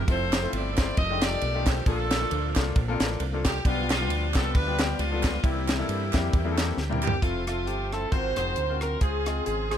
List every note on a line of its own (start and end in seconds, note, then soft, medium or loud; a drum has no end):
0.08 0.46 F1 loud
0.08 0.96 F3 medium
0.08 0.34 A3 medium
0.08 0.95 A3 medium
0.08 0.34 C4 medium
0.08 0.96 C4 medium
0.08 0.35 E4 medium
0.08 0.94 E4 medium
0.08 0.96 E4 medium
0.08 0.35 F4 medium
0.08 0.35 A4 medium
0.08 0.96 A4 medium
0.08 0.94 A4 medium
0.08 0.50 C5 loud
0.08 kick loud
0.08 ride medium
0.33 snare loud
0.33 clap loud
0.33 ride medium
0.43 0.67 A3 medium
0.43 0.67 C4 medium
0.43 0.67 E4 medium
0.43 0.67 F4 medium
0.43 0.67 C5 medium
0.53 0.91 G1 medium
0.53 0.78 D5 loud
0.53 ride medium
0.77 0.97 A3 medium
0.77 0.97 C4 medium
0.77 0.98 E4 medium
0.77 0.98 F4 medium
0.77 0.98 C5 medium
0.77 0.96 D5 loud
0.77 kick loud
0.77 snare loud
0.77 clap loud
0.77 ride soft
0.97 1.35 F1 medium
0.97 1.84 D#3 medium
0.97 1.85 G3 medium
0.97 1.84 A3 medium
0.97 1.84 F4 medium
0.97 1.22 G4 medium
0.97 1.22 A4 medium
0.97 1.84 D5 medium
0.97 1.22 D#5 loud
0.97 kick loud
0.97 ride medium
1.10 1.16 G#3 medium
1.10 1.41 D4 medium
1.10 1.41 D#4 medium
1.10 1.41 F4 medium
1.10 1.41 G4 medium
1.15 1.43 A3 medium
1.21 1.83 G4 medium
1.21 1.83 A4 medium
1.21 1.67 D5 loud
1.21 snare loud
1.21 clap medium
1.21 ride medium
1.41 1.80 B1 loud
1.41 ride medium
1.54 1.78 A3 medium
1.54 1.78 D4 medium
1.54 1.78 D#4 medium
1.54 1.78 F4 medium
1.54 1.78 G4 medium
1.66 1.87 C5 loud
1.66 kick loud
1.66 snare loud
1.66 clap loud
1.66 ride medium
1.86 2.24 A#1 loud
1.86 2.52 A#2 medium
1.86 3.62 D3 medium
1.86 3.61 F3 medium
1.86 2.12 A3 medium
1.86 3.61 A#3 medium
1.86 2.13 A#3 medium
1.86 2.13 D4 medium
1.86 2.72 D4 medium
1.86 3.61 F4 medium
1.86 2.13 F4 medium
1.86 2.72 F4 medium
1.86 2.52 A4 loud
1.86 2.13 A4 medium
1.86 kick loud
1.86 ride medium
2.11 snare loud
2.11 clap medium
2.11 ride medium
2.21 2.45 A3 medium
2.21 2.45 A#3 medium
2.21 2.46 D4 medium
2.21 2.45 F4 medium
2.21 2.46 A4 medium
2.31 2.53 D2 loud
2.31 ride medium
2.55 2.73 C2 medium
2.55 2.77 A3 medium
2.55 2.77 A#3 medium
2.55 2.77 D4 medium
2.55 2.78 F4 medium
2.55 2.78 A4 medium
2.55 kick medium
2.55 snare loud
2.55 clap loud
2.55 ride soft
2.76 2.97 A#1 medium
2.76 kick loud
2.76 ride medium
2.88 3.19 A#3 medium
2.88 2.95 C4 medium
2.88 3.19 F4 medium
2.88 3.19 A4 loud
2.88 3.19 A#4 loud
2.94 3.22 D4 medium
3.00 3.17 A1 loud
3.00 snare loud
3.00 clap medium
3.00 ride medium
3.20 3.58 C2 loud
3.20 ride medium
3.33 3.57 A3 medium
3.33 3.57 A#3 medium
3.33 3.57 D4 medium
3.33 3.57 F4 medium
3.33 3.57 A4 medium
3.45 3.64 G4 medium
3.45 kick loud
3.45 snare loud
3.45 clap loud
3.45 ride medium
3.65 4.10 B1 loud
3.65 4.31 B2 medium
3.65 5.41 F3 medium
3.65 3.92 G3 medium
3.65 5.41 G3 medium
3.65 3.92 B3 medium
3.65 5.41 B3 medium
3.65 3.92 D4 medium
3.65 3.90 D4 medium
3.65 5.41 D4 medium
3.65 3.89 F4 loud
3.65 5.41 F4 medium
3.65 3.92 F4 medium
3.65 3.92 G4 medium
3.65 kick loud
3.65 ride medium
3.90 4.54 D4 medium
3.90 4.32 F4 loud
3.90 snare loud
3.90 clap medium
3.90 ride medium
4.00 4.24 G3 medium
4.00 4.24 B3 medium
4.00 4.24 D4 medium
4.00 4.24 F4 medium
4.00 4.24 G4 medium
4.10 4.35 D2 loud
4.10 ride medium
4.34 4.52 C2 loud
4.34 4.56 G3 medium
4.34 4.56 B3 medium
4.34 4.56 D4 medium
4.34 4.56 F4 medium
4.34 4.56 G4 medium
4.34 4.53 A4 loud
4.34 kick medium
4.34 snare loud
4.34 clap loud
4.34 ride soft
4.54 4.93 D2 loud
4.54 4.98 D4 medium
4.54 4.98 F4 medium
4.54 4.79 B4 loud
4.54 kick loud
4.54 ride medium
4.67 4.98 G3 medium
4.67 4.98 B3 medium
4.67 4.98 D4 medium
4.67 4.98 F4 medium
4.67 4.98 G4 medium
4.79 4.99 G4 loud
4.79 snare loud
4.79 clap medium
4.79 ride medium
4.99 5.37 C#2 loud
4.99 5.41 D4 medium
4.99 5.44 F4 medium
4.99 ride medium
5.12 5.35 G3 medium
5.12 5.35 B3 medium
5.12 5.35 D4 medium
5.12 5.36 F4 medium
5.12 5.36 A4 medium
5.23 kick medium
5.23 snare loud
5.23 clap loud
5.23 ride medium
5.43 5.81 C2 loud
5.43 6.10 C3 medium
5.43 7.20 E3 medium
5.43 5.70 G3 medium
5.43 6.74 G3 medium
5.43 7.20 G3 medium
5.43 5.70 A#3 medium
5.43 6.74 A#3 medium
5.43 7.20 A#3 medium
5.43 5.70 C4 medium
5.43 7.20 C4 medium
5.43 6.78 E4 medium
5.43 5.70 E4 medium
5.43 7.20 G4 medium
5.43 5.71 G4 medium
5.43 kick loud
5.43 ride medium
5.68 snare loud
5.68 clap loud
5.68 ride medium
5.79 6.03 G3 medium
5.79 6.03 A#3 medium
5.79 6.03 C4 medium
5.79 6.03 E4 medium
5.79 6.03 A4 medium
5.88 6.10 G2 medium
5.88 ride medium
6.13 6.30 F2 medium
6.13 6.35 G3 medium
6.13 6.35 A#3 medium
6.13 6.35 C4 medium
6.13 6.35 E4 medium
6.13 6.35 G4 medium
6.13 kick medium
6.13 snare loud
6.13 clap loud
6.13 ride soft
6.33 6.71 E2 medium
6.33 kick loud
6.33 ride medium
6.45 6.76 G3 medium
6.45 6.76 A#3 medium
6.45 6.76 C4 medium
6.45 6.76 E4 medium
6.45 6.52 G#4 medium
6.51 6.79 A4 loud
6.57 snare loud
6.57 clap loud
6.57 ride medium
6.77 7.16 D2 medium
6.77 7.01 G5 medium
6.77 snare medium
6.90 7.14 G3 medium
6.90 7.14 A#3 medium
6.90 7.14 C4 medium
6.90 7.14 E4 medium
6.90 7.14 A#4 loud
6.90 mid tom medium
7.02 7.21 G4 medium
7.02 7.24 G4 medium
7.02 7.21 D5 medium
7.02 clap loud
7.07 floor tom loud
7.21 7.66 F1 medium
7.21 8.11 F3 medium
7.21 7.46 A3 medium
7.21 7.40 C4 medium
7.21 7.46 C4 medium
7.21 8.11 C4 soft
7.21 7.40 E4 medium
7.21 7.45 F4 medium
7.21 7.40 F4 medium
7.21 7.48 F4 medium
7.21 7.41 A4 medium
7.21 8.11 A4 medium
7.21 8.11 E5 medium
7.21 8.11 E5 soft
7.21 8.11 A5 medium
7.21 9.78 C6 medium
7.21 kick medium
7.21 closed hi-hat medium
7.46 8.08 A3 medium
7.46 8.08 C4 medium
7.46 7.78 C4 medium
7.46 7.88 F4 medium
7.46 7.78 F4 medium
7.46 7.69 F4 medium
7.46 7.78 A4 medium
7.46 7.78 E5 medium
7.46 cross-stick medium
7.46 closed hi-hat medium
7.66 8.05 G1 medium
7.66 7.93 G4 medium
7.66 closed hi-hat medium
7.91 8.06 C4 medium
7.91 8.06 E4 medium
7.91 8.07 F4 medium
7.91 8.11 A4 medium
7.91 8.07 A4 medium
7.91 8.14 A4 medium
7.91 cross-stick medium
7.91 closed hi-hat soft
8.11 8.34 G#1 medium
8.11 8.78 G#2 medium
8.11 9.00 F#3 medium
8.11 8.30 C4 medium
8.11 9.00 C4 medium
8.11 8.35 D#4 medium
8.11 8.30 F4 medium
8.11 9.00 F#4 medium
8.11 8.30 F#4 medium
8.11 8.35 F#4 medium
8.11 8.18 A4 medium
8.11 8.30 A#4 medium
8.11 8.35 C5 loud
8.11 8.37 C5 medium
8.11 9.00 F5 medium
8.11 9.00 A#5 medium
8.11 kick medium
8.11 closed hi-hat medium
8.18 9.03 A#4 medium
8.36 8.54 F1 medium
8.36 8.58 C4 medium
8.36 8.97 D#4 medium
8.36 8.58 F4 medium
8.36 8.97 F#4 medium
8.36 8.58 F#4 medium
8.36 8.59 G#4 medium
8.36 8.78 C5 medium
8.36 8.79 C5 medium
8.36 cross-stick medium
8.36 closed hi-hat medium
8.56 8.95 D2 medium
8.56 closed hi-hat medium
8.69 8.93 C4 medium
8.69 8.93 F4 medium
8.69 8.93 F#4 medium
8.69 8.93 A#4 medium
8.81 9.01 A#4 medium
8.81 cross-stick medium
8.81 closed hi-hat medium
9.01 9.39 C#2 medium
9.01 9.78 C#3 medium
9.01 9.68 C#3 medium
9.01 9.78 G#3 medium
9.01 9.46 C4 medium
9.01 9.19 C#4 medium
9.01 9.19 F4 medium
9.01 9.78 F4 medium
9.01 9.46 F4 medium
9.01 9.45 G#4 medium
9.01 9.20 G#4 medium
9.01 9.44 G#4 medium
9.01 9.78 C5 medium
9.01 9.20 C5 medium
9.01 9.78 G#5 medium
9.01 kick medium
9.01 closed hi-hat medium
9.26 9.57 C4 medium
9.26 9.57 F4 medium
9.26 9.57 G#4 medium
9.26 9.57 D#5 medium
9.26 cross-stick loud
9.26 closed hi-hat medium
9.46 9.78 G#1 medium
9.46 9.78 C4 medium
9.46 9.78 F4 medium
9.46 9.70 G#4 medium
9.46 9.78 G#4 medium
9.46 closed hi-hat medium
9.71 9.78 C#4 medium
9.71 9.78 F4 medium
9.71 9.78 G#4 medium
9.71 9.78 C5 medium
9.71 cross-stick medium
9.71 closed hi-hat soft